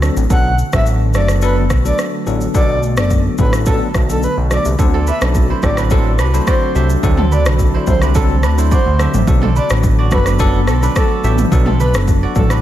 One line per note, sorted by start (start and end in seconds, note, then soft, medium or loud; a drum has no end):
0.00 0.10 D2 medium
0.00 0.26 D3 medium
0.00 0.23 F#3 medium
0.00 0.26 A3 medium
0.00 0.26 C4 medium
0.00 0.23 C4 medium
0.00 0.23 D4 medium
0.00 0.26 F#4 medium
0.00 0.23 A4 medium
0.00 cross-stick medium
0.00 shaker medium
0.17 0.27 A1 loud
0.17 shaker medium
0.30 0.63 B1 loud
0.30 4.75 D3 medium
0.30 0.51 F#3 medium
0.30 4.75 A3 medium
0.30 4.75 B3 medium
0.30 0.51 B3 medium
0.30 0.51 D4 medium
0.30 0.51 A4 medium
0.30 0.55 F#5 loud
0.30 kick loud
0.30 shaker medium
0.58 shaker medium
0.73 1.16 A1 medium
0.73 1.11 F#3 medium
0.73 1.11 B3 medium
0.73 1.11 D4 medium
0.73 1.11 A4 medium
0.73 0.85 E5 medium
0.73 kick medium
0.73 cross-stick loud
0.73 shaker medium
0.86 shaker medium
1.14 1.72 F#1 medium
1.14 1.40 F#3 medium
1.14 1.40 B3 medium
1.14 1.40 D4 medium
1.14 1.40 A4 medium
1.14 1.27 D5 medium
1.14 cross-stick medium
1.14 shaker medium
1.28 cross-stick medium
1.28 shaker medium
1.41 1.63 F#3 medium
1.41 1.63 B3 medium
1.41 1.63 D4 medium
1.41 1.63 A4 loud
1.41 1.55 B4 medium
1.41 shaker medium
1.70 1.92 B1 medium
1.70 kick medium
1.70 cross-stick medium
1.70 shaker medium
1.85 2.23 F#3 medium
1.85 2.23 B3 medium
1.85 2.23 D4 medium
1.85 2.24 A4 medium
1.85 1.97 D5 medium
1.85 shaker medium
1.98 cross-stick medium
1.98 shaker medium
2.26 2.48 A1 medium
2.26 2.52 F#3 medium
2.26 2.52 B3 medium
2.26 2.53 D4 medium
2.26 2.53 A4 medium
2.26 shaker medium
2.41 shaker medium
2.54 2.99 B1 loud
2.54 2.75 F#3 medium
2.54 2.75 B3 medium
2.54 2.75 D4 medium
2.54 2.75 A4 loud
2.54 2.79 D5 loud
2.54 kick loud
2.54 shaker medium
2.83 shaker medium
2.97 3.29 F#1 medium
2.97 3.35 F#3 medium
2.97 3.36 B3 medium
2.97 3.36 D4 medium
2.97 3.36 A4 medium
2.97 3.09 D5 medium
2.97 cross-stick loud
2.97 shaker medium
3.10 kick medium
3.10 shaker medium
3.38 3.81 A1 medium
3.38 3.65 F#3 medium
3.38 3.65 B3 medium
3.38 3.65 D4 medium
3.38 3.65 A4 medium
3.38 3.52 B4 medium
3.38 kick medium
3.38 shaker soft
3.53 cross-stick medium
3.53 shaker medium
3.66 3.87 F#3 medium
3.66 3.87 B3 medium
3.66 3.88 D4 medium
3.66 3.88 A4 loud
3.66 3.80 A4 medium
3.66 kick medium
3.66 shaker medium
3.94 4.27 B1 medium
3.94 kick medium
3.94 cross-stick medium
3.94 shaker medium
4.09 4.29 F#3 medium
4.09 4.29 B3 medium
4.09 4.29 D4 medium
4.09 4.30 A4 medium
4.09 4.21 A4 medium
4.09 shaker medium
4.23 4.36 B4 medium
4.23 shaker medium
4.37 4.59 B1 medium
4.51 4.71 F#3 medium
4.51 4.72 B3 medium
4.51 4.72 D4 medium
4.51 4.72 A4 medium
4.51 4.64 D5 medium
4.51 cross-stick medium
4.51 shaker medium
4.65 4.76 C2 medium
4.65 shaker medium
4.79 5.11 D2 loud
4.79 12.62 D3 medium
4.79 4.99 F#3 medium
4.79 12.62 A3 medium
4.79 5.00 C4 medium
4.79 9.24 C4 medium
4.79 5.00 D4 medium
4.79 9.23 F#4 medium
4.79 5.00 A4 loud
4.79 kick loud
4.79 shaker medium
4.94 5.13 C4 medium
4.94 5.91 A4 medium
5.07 5.78 D4 medium
5.07 5.56 B4 medium
5.07 5.20 E5 medium
5.07 shaker medium
5.21 5.53 B1 medium
5.21 5.60 F#3 medium
5.21 5.60 C4 medium
5.21 5.60 D4 medium
5.21 5.60 A4 medium
5.21 cross-stick loud
5.21 shaker medium
5.35 kick medium
5.35 shaker medium
5.50 6.35 E4 medium
5.50 5.84 C5 medium
5.62 6.21 A1 loud
5.62 5.89 F#3 medium
5.62 5.89 C4 medium
5.62 5.89 D4 medium
5.62 5.89 A4 medium
5.62 5.76 D5 medium
5.62 kick medium
5.62 cross-stick medium
5.62 shaker medium
5.77 6.20 D4 medium
5.77 5.98 B4 medium
5.77 cross-stick medium
5.77 shaker medium
5.90 6.12 F#3 medium
5.90 6.12 C4 medium
5.90 6.26 C4 medium
5.90 6.12 D4 medium
5.90 6.12 A4 loud
5.90 7.18 A4 medium
5.90 kick loud
5.90 shaker medium
6.19 6.40 C2 medium
6.19 7.32 D4 medium
6.19 6.40 B4 medium
6.19 cross-stick medium
6.19 shaker medium
6.33 6.72 F#3 medium
6.33 6.72 C4 medium
6.33 6.72 D4 medium
6.33 7.75 E4 medium
6.33 6.72 A4 medium
6.33 7.38 C5 medium
6.33 shaker medium
6.47 6.82 F#4 medium
6.47 6.88 C5 medium
6.47 7.58 D5 medium
6.47 kick loud
6.47 cross-stick loud
6.47 shaker medium
6.75 6.97 C2 medium
6.75 7.01 F#3 medium
6.75 7.01 C4 medium
6.75 7.01 D4 medium
6.75 8.18 G4 medium
6.75 7.01 A4 medium
6.75 7.79 E5 medium
6.75 shaker medium
6.90 shaker medium
7.03 7.47 D2 loud
7.03 7.24 F#3 medium
7.03 7.24 C4 medium
7.03 7.24 D4 medium
7.03 7.24 A4 loud
7.03 kick loud
7.03 shaker medium
7.17 7.38 C4 medium
7.17 8.15 A4 medium
7.17 mid tom loud
7.32 8.03 D4 medium
7.32 7.80 B4 medium
7.32 7.44 D5 medium
7.32 shaker medium
7.46 7.77 B1 medium
7.46 7.84 F#3 medium
7.46 7.84 C4 medium
7.46 7.84 D4 medium
7.46 7.84 A4 medium
7.46 cross-stick loud
7.46 shaker medium
7.59 kick medium
7.59 shaker medium
7.74 8.59 E4 medium
7.74 8.08 C5 medium
7.87 8.45 C2 medium
7.87 8.13 F#3 medium
7.87 8.13 C4 medium
7.87 8.13 D4 medium
7.87 8.13 A4 medium
7.87 8.00 C5 medium
7.87 kick medium
7.87 mid tom medium
7.87 shaker medium
8.02 8.44 D4 medium
8.02 8.23 B4 medium
8.02 cross-stick medium
8.02 shaker medium
8.15 8.36 F#3 medium
8.15 8.36 C4 medium
8.15 8.50 C4 medium
8.15 8.36 D4 medium
8.15 8.36 A4 loud
8.15 9.42 A4 loud
8.15 kick loud
8.15 shaker medium
8.43 8.76 D2 medium
8.43 9.57 D4 medium
8.43 8.64 B4 medium
8.43 cross-stick medium
8.43 shaker medium
8.58 8.78 F#3 medium
8.58 8.78 C4 medium
8.58 8.78 D4 medium
8.58 10.16 E4 medium
8.58 8.78 A4 medium
8.58 9.62 C5 medium
8.58 shaker medium
8.71 9.07 F#4 medium
8.71 9.12 C5 medium
8.71 9.83 D5 medium
8.71 kick loud
8.71 shaker medium
8.86 9.07 D2 medium
8.99 9.20 F#3 medium
8.99 9.20 C4 medium
8.99 9.20 D4 medium
8.99 10.05 G4 medium
8.99 9.20 A4 medium
8.99 10.03 E5 medium
8.99 cross-stick medium
8.99 shaker medium
9.14 9.24 A1 loud
9.14 mid tom medium
9.14 shaker medium
9.27 9.60 B1 loud
9.27 9.48 F#3 medium
9.27 9.48 B3 medium
9.27 12.62 B3 medium
9.27 9.48 D4 medium
9.27 9.48 A4 loud
9.27 kick loud
9.27 shaker medium
9.42 9.62 C4 medium
9.42 10.40 A4 medium
9.42 mid tom loud
9.56 10.27 D4 medium
9.56 10.26 B4 medium
9.56 9.69 D5 medium
9.56 shaker medium
9.70 10.13 A1 medium
9.70 10.08 F#3 medium
9.70 10.08 B3 medium
9.70 10.09 D4 medium
9.70 10.09 A4 medium
9.70 cross-stick loud
9.70 shaker medium
9.83 kick medium
9.83 shaker medium
9.99 10.97 F#4 medium
9.99 10.96 D5 medium
10.11 10.69 F#1 loud
10.11 10.37 F#3 medium
10.11 10.38 B3 medium
10.11 10.38 D4 medium
10.11 10.38 A4 medium
10.11 10.25 B4 loud
10.11 kick medium
10.11 cross-stick medium
10.11 mid tom medium
10.11 shaker medium
10.26 10.41 D4 medium
10.26 10.75 B4 medium
10.26 cross-stick medium
10.26 shaker medium
10.39 10.60 F#3 medium
10.39 10.60 B3 medium
10.39 10.60 D4 medium
10.39 10.83 D4 medium
10.39 10.61 A4 loud
10.39 10.68 A4 medium
10.39 kick loud
10.39 shaker medium
10.67 10.89 B1 medium
10.67 10.89 C4 medium
10.67 11.66 A4 medium
10.67 cross-stick medium
10.67 shaker medium
10.82 11.20 F#3 medium
10.82 11.20 B3 medium
10.82 11.21 D4 medium
10.82 11.81 D4 medium
10.82 11.21 A4 medium
10.82 11.74 B4 medium
10.82 shaker medium
10.96 11.31 F#4 medium
10.96 11.36 A4 medium
10.96 12.07 D5 medium
10.96 kick loud
10.96 cross-stick loud
10.96 shaker medium
11.24 11.45 A1 medium
11.24 11.50 F#3 medium
11.24 11.50 B3 medium
11.24 11.50 D4 medium
11.24 12.30 G4 medium
11.24 11.50 A4 medium
11.24 12.28 E5 medium
11.24 shaker medium
11.38 mid tom medium
11.38 shaker medium
11.52 11.96 B1 loud
11.52 11.72 F#3 medium
11.52 11.72 B3 medium
11.52 11.73 D4 medium
11.52 11.73 A4 loud
11.52 kick loud
11.52 shaker medium
11.66 11.86 C4 medium
11.66 12.62 A4 medium
11.66 mid tom loud
11.80 12.51 D4 medium
11.80 12.50 B4 medium
11.80 11.93 B4 medium
11.80 shaker medium
11.94 12.26 F#1 medium
11.94 12.33 F#3 medium
11.94 12.33 B3 medium
11.94 12.33 D4 medium
11.94 12.33 A4 medium
11.94 cross-stick loud
11.94 shaker medium
12.08 kick medium
12.08 shaker medium
12.23 12.62 F#4 medium
12.23 12.62 D5 medium
12.35 12.62 A1 medium
12.35 12.62 F#3 medium
12.35 12.62 B3 medium
12.35 12.62 D4 medium
12.35 12.62 A4 medium
12.35 12.49 A4 medium
12.35 kick medium
12.35 mid tom medium
12.35 shaker medium
12.50 12.62 D4 medium
12.50 12.62 B4 medium
12.50 cross-stick medium
12.50 shaker medium